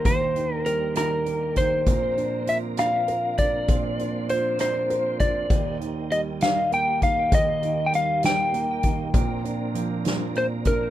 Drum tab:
HH |xxxxxx|xxxxxx|xxxxxx|xxxxxx|
SD |---r--|---r--|---r--|---o--|
BD |o----o|o----o|o----o|o----o|

HH |xxxxxx|xxxxxx|
SD |---o--|---o--|
BD |o----o|o----o|